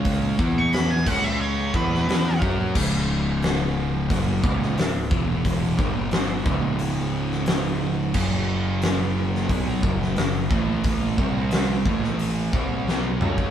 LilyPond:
<<
  \new Staff \with { instrumentName = "Lead electric guitar" } { \time 4/4 \key cis \minor \tempo 4 = 89 r8. cis'''16 b''16 gis''16 fis''16 e''16 cis''8 b'4 r8 | r1 | r1 | r1 |
r1 | }
  \new Staff \with { instrumentName = "Distorted electric guitar" } { \clef bass \time 4/4 \key cis \minor <cis gis cis'>8 <e b e'>4 <cis gis cis'>4 <e b e'>8 <e b e'>8 <fis cis' fis'>8 | <cis, gis, cis>2 <fis, cis fis>8 <cis, gis, cis>8 <cis, gis,>8 <e, b, e>8~ | <e, b, e>8 <g, d g>4 <cis, gis, cis>2~ <cis, gis, cis>8 | <fis, cis fis>2 <b, fis b>8 <fis, cis fis>8 <fis, cis>8 <a, e a>8~ |
<a, e a>8 <c g c'>4 <a, e a>4 <bis, g bis>8 <b, fis b>8 <cis gis cis'>8 | }
  \new Staff \with { instrumentName = "Distorted electric guitar" } { \clef bass \time 4/4 \key cis \minor <cis gis cis'>8 <e b e'>4 <cis gis cis'>4 <e b e'>8 <e b e'>8 <fis cis' fis'>8 | <cis, gis, cis>2 <fis, cis fis>8 <cis, gis, cis>8 <cis, gis,>8 <e, b, e>8~ | <e, b, e>8 <g, d g>4 <cis, gis, cis>2~ <cis, gis, cis>8 | <fis, cis fis>2 <b, fis b>8 <fis, cis fis>8 <fis, cis>8 <a, e a>8~ |
<a, e a>8 <c g c'>4 <a, e a>4 <bis, g bis>8 <b, fis b>8 <cis gis cis'>8 | }
  \new Staff \with { instrumentName = "Picked electric bass" } { \clef bass \time 4/4 \key cis \minor cis,8 e,4 cis,4 e,8 e,8 fis,8 | cis,,2 fis,,8 cis,,8 cis,,8 e,,8~ | e,,8 g,,4 cis,,2~ cis,,8 | fis,,2 b,,8 fis,,8 fis,,8 a,,8~ |
a,,8 c,4 a,,4 bis,,8 b,,8 cis,8 | }
  \new DrumStaff \with { instrumentName = "Drums" } \drummode { \time 4/4 <hho bd>8 bd8 <hho sn>8 <cymc bd>8 r8 bd16 sn16 <hho sn>8 bd8 | <cymc bd>4 <hho sn>4 <hho bd>8 bd16 sn16 <hho sn>8 bd8 | <hho bd>8 bd8 <hho sn>8 bd8 hho8. sn16 <hho sn>4 | <cymc bd>4 <hho sn>8. sn16 <hho bd>8 bd16 sn16 <hho sn>8 bd8 |
<hho bd>8 bd8 <hho sn>8 bd16 sn16 hho8 bd8 sn8 toml16 bd16 | }
>>